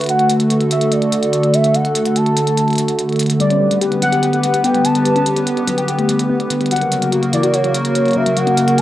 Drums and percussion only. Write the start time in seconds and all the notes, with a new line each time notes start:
0.01 closed hi-hat
0.04 closed hi-hat
0.06 closed hi-hat
0.09 closed hi-hat
0.19 closed hi-hat
0.30 closed hi-hat
0.40 closed hi-hat
0.50 closed hi-hat
0.61 closed hi-hat
0.71 closed hi-hat
0.81 closed hi-hat
0.92 closed hi-hat
1.02 closed hi-hat
1.12 closed hi-hat
1.23 closed hi-hat
1.33 closed hi-hat
1.43 closed hi-hat
1.54 closed hi-hat
1.64 closed hi-hat
1.74 closed hi-hat
1.85 closed hi-hat
1.95 closed hi-hat
2.05 closed hi-hat
2.16 closed hi-hat
2.26 closed hi-hat
2.37 closed hi-hat
2.47 closed hi-hat
2.57 closed hi-hat
2.68 closed hi-hat
2.70 closed hi-hat
2.73 closed hi-hat
2.76 closed hi-hat
2.78 closed hi-hat
2.88 closed hi-hat
2.99 closed hi-hat
3.09 closed hi-hat
3.13 closed hi-hat
3.16 closed hi-hat
3.19 closed hi-hat
3.23 closed hi-hat
3.26 closed hi-hat
3.30 closed hi-hat
3.40 closed hi-hat
3.50 closed hi-hat
3.71 closed hi-hat
3.81 closed hi-hat
3.92 closed hi-hat
4.02 closed hi-hat
4.12 closed hi-hat
4.23 closed hi-hat
4.33 closed hi-hat
4.43 closed hi-hat
4.54 closed hi-hat
4.64 closed hi-hat
4.74 closed hi-hat
4.85 closed hi-hat
4.95 closed hi-hat
5.05 closed hi-hat
5.16 closed hi-hat
5.26 closed hi-hat
5.37 closed hi-hat
5.47 closed hi-hat
5.57 closed hi-hat
5.68 closed hi-hat
5.78 closed hi-hat
5.88 closed hi-hat
5.99 closed hi-hat
6.09 closed hi-hat
6.19 closed hi-hat
6.40 closed hi-hat
6.50 closed hi-hat
6.61 closed hi-hat
6.66 closed hi-hat
6.71 closed hi-hat
6.76 closed hi-hat
6.82 closed hi-hat
6.92 closed hi-hat
7.02 closed hi-hat
7.12 closed hi-hat
7.23 closed hi-hat
7.33 closed hi-hat
7.43 closed hi-hat
7.54 closed hi-hat
7.64 closed hi-hat
7.74 closed hi-hat
7.85 closed hi-hat
7.95 closed hi-hat
8.06 closed hi-hat
8.08 closed hi-hat
8.11 closed hi-hat
8.13 closed hi-hat
8.26 closed hi-hat
8.37 closed hi-hat
8.47 closed hi-hat
8.57 closed hi-hat
8.68 closed hi-hat
8.78 closed hi-hat